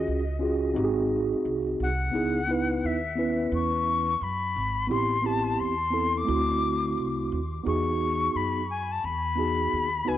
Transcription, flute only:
0.00 0.43 D#5 medium
1.83 2.87 F#5 medium
2.86 3.53 E5 medium
3.54 4.25 C#6 medium
4.23 4.90 B5 loud
4.91 5.27 C6 loud
5.26 5.61 A5 medium
5.60 6.19 C6 medium
6.17 7.32 D6 loud
7.68 8.38 C#6 loud
8.36 8.69 B5 medium
8.70 8.93 G#5 medium
8.92 9.06 A5 medium
9.05 10.09 B5 medium
10.08 10.18 G#5 medium

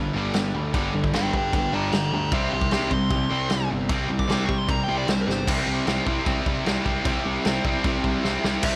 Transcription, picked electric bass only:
0.00 0.12 G1 medium
0.15 0.32 G1 loud
0.34 0.51 G1 medium
0.54 0.71 D2 medium
0.74 0.91 G1 medium
0.94 1.11 G1 medium
1.14 1.31 G1 medium
1.33 1.51 G2 medium
1.53 1.70 G1 loud
1.73 1.90 G1 medium
1.93 2.10 G1 medium
2.13 2.30 D2 loud
2.32 2.49 C2 medium
2.53 2.70 C2 medium
2.73 2.89 C2 medium
2.91 3.08 C3 medium
3.10 3.28 C2 loud
3.31 3.48 C2 medium
3.51 3.68 C2 medium
3.71 3.88 G1 medium
3.89 4.07 C2 loud
4.10 4.27 C2 medium
4.29 4.46 C2 medium
4.49 4.66 C3 medium
4.68 4.86 C2 loud
4.88 5.06 C2 medium
5.08 5.25 C2 medium
5.27 5.45 G1 medium
5.47 5.60 C2 medium
5.67 5.80 C2 loud
5.87 6.00 C2 medium
6.07 6.19 C2 medium
6.27 6.39 C2 loud
6.46 6.58 C2 loud
6.66 6.79 C2 medium
6.86 6.98 C2 medium
7.05 7.18 C2 loud
7.25 7.38 C2 loud
7.46 7.58 C2 medium
7.65 7.77 C2 medium
7.85 7.97 C2 medium
8.04 8.17 C2 medium
8.25 8.37 C2 medium
8.44 8.56 C2 medium
8.63 8.76 C2 medium

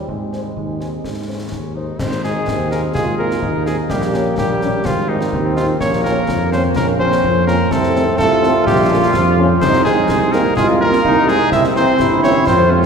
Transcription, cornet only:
0.33 0.41 G#5 soft
0.80 0.89 G#5 soft
1.27 1.77 C#4 medium
1.75 2.01 D#4 medium
2.00 2.23 C5 medium
2.24 2.68 G#4 medium
2.71 2.82 A#4 medium
2.95 3.17 G#4 medium
3.18 3.63 A#4 medium
3.66 3.77 G#4 medium
3.90 4.35 G4 medium
4.38 4.87 G4 medium
4.86 5.11 F4 loud
5.09 5.56 D#4 medium
5.56 5.67 F4 loud
5.80 6.03 C#5 loud
6.04 6.49 A#4 medium
6.52 6.63 C5 loud
6.76 6.87 A#4 loud
7.00 7.44 C5 loud
7.47 7.73 A#4 loud
7.72 8.18 A4 loud
8.18 8.63 A4 loud
8.67 9.11 G4 loud
9.14 9.36 F4 medium
9.61 9.83 C5 loud
9.85 10.34 G#4 loud
10.32 10.56 A#4 loud
10.57 10.67 G#4 loud
10.81 11.30 A#4 loud
11.29 11.52 G#4 loud
11.53 11.63 E5 loud
11.76 12.20 C5 loud
12.23 12.45 C#5 loud
12.47 12.72 C5 loud
12.71 12.86 F4 medium

